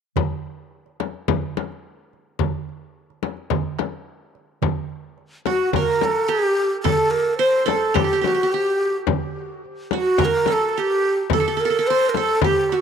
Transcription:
0.16 darbuka dum, frame drum
0.30 darbuka ka
0.45 darbuka ka
0.86 darbuka ka
1.00 darbuka tek, frame drum
1.14 darbuka ka
1.28 darbuka dum, frame drum
1.57 darbuka tek, frame drum
1.72 darbuka ka
2.13 darbuka ka
2.39 frame drum, darbuka dum
2.54 darbuka ka
2.69 darbuka ka
3.10 darbuka ka
3.23 darbuka tek, frame drum
3.37 darbuka ka
3.50 frame drum, darbuka dum
3.79 darbuka tek, frame drum
3.92 darbuka ka
4.35 darbuka ka
4.62 darbuka dum, frame drum
4.76 darbuka ka
4.90 darbuka ka
5.18 darbuka ka
5.46 F#4, darbuka tek, frame drum
5.73 A#4, darbuka dum, frame drum
6.01 A4, darbuka tek, frame drum
6.28 G4
6.58 darbuka ka
6.83 A4, frame drum, darbuka dum
7.11 A#4
7.38 C5, darbuka ka
7.66 A4, darbuka tek, frame drum
7.94 G4, frame drum, darbuka dum
8.04 G4
8.13 G4
8.21 F#4 G4, frame drum
8.26 G4, darbuka tek
8.34 G4
8.40 G4, darbuka ka
8.53 G4
8.81 darbuka ka
9.07 frame drum, darbuka dum
9.23 darbuka ka
9.37 darbuka ka
9.65 darbuka ka
9.91 F#4, darbuka tek, frame drum
9.97 F#4
10.18 A#4, frame drum, darbuka dum
10.25 A#4
10.46 A4, darbuka tek, frame drum
10.52 A4
10.62 darbuka ka
10.69 A4
10.77 G4
11.04 darbuka ka
11.30 A4, frame drum, darbuka dum
11.34 A4
11.40 A4
11.48 A4
11.57 A4 A#4, darbuka ka
11.65 A4
11.70 A4
11.79 A4
11.87 C5, darbuka ka
12.00 darbuka ka
12.09 A#4
12.14 A4, darbuka tek, frame drum
12.27 darbuka ka
12.42 G4, frame drum, darbuka dum
12.69 F#4, darbuka tek
12.73 F#4

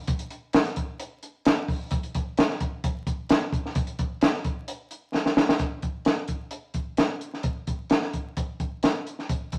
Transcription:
0.07 kick, closed hi-hat
0.19 closed hi-hat
0.30 closed hi-hat
0.53 snare, closed hi-hat
0.65 snare, closed hi-hat
0.76 kick, closed hi-hat
1.00 closed hi-hat
1.23 closed hi-hat
1.45 snare, closed hi-hat
1.68 kick, open hi-hat
1.91 kick, closed hi-hat
2.03 closed hi-hat
2.15 kick, closed hi-hat
2.38 snare, closed hi-hat
2.50 snare
2.61 kick, closed hi-hat
2.84 kick, closed hi-hat
3.07 kick, closed hi-hat
3.29 snare, closed hi-hat
3.52 kick, closed hi-hat
3.66 snare
3.75 kick, closed hi-hat
3.87 closed hi-hat
3.99 kick, closed hi-hat
4.21 snare, closed hi-hat
4.34 snare
4.44 kick, closed hi-hat
4.68 closed hi-hat
4.91 closed hi-hat
5.14 snare
5.26 snare
5.37 snare
5.49 snare
5.59 kick, closed hi-hat
5.82 kick, closed hi-hat
6.05 snare, closed hi-hat
6.28 kick, closed hi-hat
6.51 closed hi-hat
6.74 kick, closed hi-hat
6.97 snare, closed hi-hat
7.21 closed hi-hat
7.34 snare
7.43 kick, closed hi-hat
7.67 kick, closed hi-hat
7.90 snare, closed hi-hat
8.02 snare
8.13 kick, closed hi-hat
8.37 kick, closed hi-hat
8.60 kick, closed hi-hat
8.83 snare, closed hi-hat
9.07 closed hi-hat
9.19 snare
9.29 kick, closed hi-hat
9.52 kick, closed hi-hat

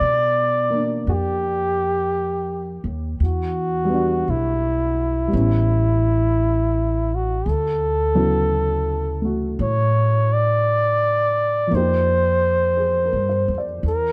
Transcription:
Already playing: G3 D4 F4 A#4 C5 D5
0.01 B2
0.70 A#3
0.74 D4
1.07 F2 F#4 G4
2.84 D#2
3.20 E2
3.24 F#4
3.85 G3
3.89 B3 D4
3.95 F#4
4.28 B1 E4
5.28 G3 B3
5.33 A1 C#4
5.39 E4
7.15 F#4
7.46 D2 A4
8.15 C#3 F#3 B3 E4
9.22 A3 F#4
9.59 A2 C#5
10.33 D5
11.67 F3 A#3
11.72 F2 D#4 C5
11.77 G4
12.77 G#4
13.05 A#4
13.13 G2
13.29 C5
13.48 F2
13.58 D5
13.83 E2
13.88 A#4

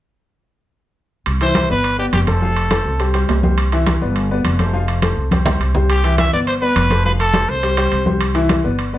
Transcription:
1.26 C2, high conga, high timbale
1.40 E3 E4 C5 E5, high conga, high timbale
1.55 high conga, high timbale
1.70 G1 B3 B4 D5
1.84 high conga, high timbale
1.98 B3 G4 B4 D5, high conga
2.13 F1 G4, high conga, high timbale
2.27 A3 A4 C5, high conga, high timbale
2.42 F3 F4 F5, high conga
2.56 high conga, high timbale
2.71 A3 A4 C5, high conga, high timbale
2.85 C2, high conga
3.00 G3 G4 C5, high conga, high timbale
3.14 G3 G4 C5, high conga, high timbale
3.29 C2, high conga, high timbale, low timbale
3.43 G3 G4 C5, high conga
3.58 high conga, high timbale
3.72 E3 E4 E5, high conga, high timbale
3.87 high conga, high timbale
4.01 G1 B3 B4 D5
4.16 high conga, high timbale
4.30 B3 B4 D5, high conga
4.44 F1, high conga, high timbale
4.59 A3 A4 C5, high conga, high timbale
4.73 F3 F4 F5, high conga
4.88 high conga, high timbale
5.02 A3 A4 C5, high conga, high timbale
5.17 C2, high conga
5.31 G3 G4 C5, high conga, high timbale
5.46 G3 G4 C5, low conga, high timbale
5.60 C2, high timbale
5.75 G3 G4 C5, low conga
5.90 G4, high conga, high timbale
6.04 E3 E4 E5, high conga, high timbale
6.18 E5, high conga, high timbale
6.33 G1 B3 B4 D5
6.47 C5, high conga, high timbale
6.61 B3 B4 D5, high conga
6.76 F1, high conga, high timbale
6.90 A3 A4 C5, high conga, high timbale
7.05 F3 F4 B4 F5, high conga
7.19 A4, high conga, high timbale
7.33 A3 A4 C5, high conga, high timbale
7.48 C2 C5, high conga
7.63 G3 G4 C5, high conga, high timbale
7.77 G3 G4 C5, high conga, high timbale
7.92 C2, high conga, high timbale
8.06 G3 G4 C5, high conga
8.21 high conga, high timbale
8.35 E3 E4 E5, high conga, high timbale
8.49 high conga, high timbale
8.64 G1 B3 B4 D5
8.79 high conga, high timbale
8.93 B3 B4 D5, high conga

